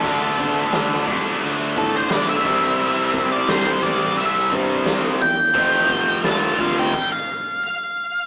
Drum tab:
CC |--------|--------|----x---|
HH |o-o-o-o-|o-o-o-o-|o-o-----|
SD |--o---o-|--o---o-|--o-----|
BD |oo-o-o-o|-o-o-o--|oo-oo---|